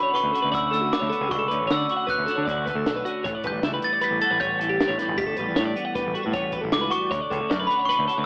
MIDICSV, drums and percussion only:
0, 0, Header, 1, 2, 480
1, 0, Start_track
1, 0, Tempo, 387347
1, 1620, Time_signature, 5, 2, 24, 8
1, 10232, End_track
2, 0, Start_track
2, 0, Title_t, "Drums"
2, 199, Note_on_c, 9, 42, 81
2, 323, Note_off_c, 9, 42, 0
2, 437, Note_on_c, 9, 42, 60
2, 561, Note_off_c, 9, 42, 0
2, 666, Note_on_c, 9, 36, 93
2, 671, Note_on_c, 9, 42, 85
2, 790, Note_off_c, 9, 36, 0
2, 795, Note_off_c, 9, 42, 0
2, 912, Note_on_c, 9, 42, 59
2, 1035, Note_off_c, 9, 42, 0
2, 1152, Note_on_c, 9, 38, 110
2, 1152, Note_on_c, 9, 42, 84
2, 1276, Note_off_c, 9, 38, 0
2, 1276, Note_off_c, 9, 42, 0
2, 1394, Note_on_c, 9, 42, 58
2, 1518, Note_off_c, 9, 42, 0
2, 1628, Note_on_c, 9, 36, 108
2, 1631, Note_on_c, 9, 42, 79
2, 1752, Note_off_c, 9, 36, 0
2, 1755, Note_off_c, 9, 42, 0
2, 1874, Note_on_c, 9, 42, 60
2, 1998, Note_off_c, 9, 42, 0
2, 2113, Note_on_c, 9, 38, 107
2, 2113, Note_on_c, 9, 42, 83
2, 2237, Note_off_c, 9, 38, 0
2, 2237, Note_off_c, 9, 42, 0
2, 2346, Note_on_c, 9, 42, 49
2, 2470, Note_off_c, 9, 42, 0
2, 2583, Note_on_c, 9, 36, 102
2, 2588, Note_on_c, 9, 42, 76
2, 2707, Note_off_c, 9, 36, 0
2, 2712, Note_off_c, 9, 42, 0
2, 2825, Note_on_c, 9, 38, 31
2, 2825, Note_on_c, 9, 42, 55
2, 2949, Note_off_c, 9, 38, 0
2, 2949, Note_off_c, 9, 42, 0
2, 3069, Note_on_c, 9, 36, 99
2, 3080, Note_on_c, 9, 42, 72
2, 3193, Note_off_c, 9, 36, 0
2, 3204, Note_off_c, 9, 42, 0
2, 3309, Note_on_c, 9, 36, 72
2, 3315, Note_on_c, 9, 42, 58
2, 3433, Note_off_c, 9, 36, 0
2, 3439, Note_off_c, 9, 42, 0
2, 3549, Note_on_c, 9, 38, 102
2, 3549, Note_on_c, 9, 42, 81
2, 3673, Note_off_c, 9, 38, 0
2, 3673, Note_off_c, 9, 42, 0
2, 3790, Note_on_c, 9, 42, 63
2, 3914, Note_off_c, 9, 42, 0
2, 4030, Note_on_c, 9, 36, 103
2, 4031, Note_on_c, 9, 42, 79
2, 4154, Note_off_c, 9, 36, 0
2, 4155, Note_off_c, 9, 42, 0
2, 4258, Note_on_c, 9, 42, 60
2, 4266, Note_on_c, 9, 36, 68
2, 4382, Note_off_c, 9, 42, 0
2, 4390, Note_off_c, 9, 36, 0
2, 4501, Note_on_c, 9, 38, 118
2, 4501, Note_on_c, 9, 42, 90
2, 4625, Note_off_c, 9, 38, 0
2, 4625, Note_off_c, 9, 42, 0
2, 4736, Note_on_c, 9, 42, 56
2, 4860, Note_off_c, 9, 42, 0
2, 4975, Note_on_c, 9, 42, 79
2, 5099, Note_off_c, 9, 42, 0
2, 5221, Note_on_c, 9, 42, 61
2, 5345, Note_off_c, 9, 42, 0
2, 5463, Note_on_c, 9, 36, 96
2, 5463, Note_on_c, 9, 42, 81
2, 5587, Note_off_c, 9, 36, 0
2, 5587, Note_off_c, 9, 42, 0
2, 5712, Note_on_c, 9, 42, 61
2, 5836, Note_off_c, 9, 42, 0
2, 5954, Note_on_c, 9, 38, 106
2, 5954, Note_on_c, 9, 42, 78
2, 6078, Note_off_c, 9, 38, 0
2, 6078, Note_off_c, 9, 42, 0
2, 6183, Note_on_c, 9, 38, 33
2, 6183, Note_on_c, 9, 42, 59
2, 6307, Note_off_c, 9, 38, 0
2, 6307, Note_off_c, 9, 42, 0
2, 6422, Note_on_c, 9, 36, 112
2, 6423, Note_on_c, 9, 42, 79
2, 6546, Note_off_c, 9, 36, 0
2, 6547, Note_off_c, 9, 42, 0
2, 6649, Note_on_c, 9, 42, 62
2, 6773, Note_off_c, 9, 42, 0
2, 6892, Note_on_c, 9, 38, 115
2, 6892, Note_on_c, 9, 42, 87
2, 7016, Note_off_c, 9, 38, 0
2, 7016, Note_off_c, 9, 42, 0
2, 7145, Note_on_c, 9, 42, 52
2, 7269, Note_off_c, 9, 42, 0
2, 7380, Note_on_c, 9, 38, 34
2, 7380, Note_on_c, 9, 42, 78
2, 7381, Note_on_c, 9, 36, 102
2, 7504, Note_off_c, 9, 38, 0
2, 7504, Note_off_c, 9, 42, 0
2, 7505, Note_off_c, 9, 36, 0
2, 7622, Note_on_c, 9, 42, 55
2, 7746, Note_off_c, 9, 42, 0
2, 7849, Note_on_c, 9, 42, 73
2, 7855, Note_on_c, 9, 36, 98
2, 7973, Note_off_c, 9, 42, 0
2, 7979, Note_off_c, 9, 36, 0
2, 8083, Note_on_c, 9, 42, 58
2, 8091, Note_on_c, 9, 36, 75
2, 8207, Note_off_c, 9, 42, 0
2, 8215, Note_off_c, 9, 36, 0
2, 8330, Note_on_c, 9, 38, 104
2, 8330, Note_on_c, 9, 42, 85
2, 8454, Note_off_c, 9, 38, 0
2, 8454, Note_off_c, 9, 42, 0
2, 8580, Note_on_c, 9, 42, 62
2, 8704, Note_off_c, 9, 42, 0
2, 8818, Note_on_c, 9, 36, 114
2, 8820, Note_on_c, 9, 42, 88
2, 8942, Note_off_c, 9, 36, 0
2, 8944, Note_off_c, 9, 42, 0
2, 9062, Note_on_c, 9, 36, 75
2, 9074, Note_on_c, 9, 42, 68
2, 9186, Note_off_c, 9, 36, 0
2, 9198, Note_off_c, 9, 42, 0
2, 9306, Note_on_c, 9, 38, 114
2, 9306, Note_on_c, 9, 42, 90
2, 9430, Note_off_c, 9, 38, 0
2, 9430, Note_off_c, 9, 42, 0
2, 9548, Note_on_c, 9, 42, 61
2, 9672, Note_off_c, 9, 42, 0
2, 9793, Note_on_c, 9, 42, 80
2, 9917, Note_off_c, 9, 42, 0
2, 10027, Note_on_c, 9, 42, 59
2, 10151, Note_off_c, 9, 42, 0
2, 10232, End_track
0, 0, End_of_file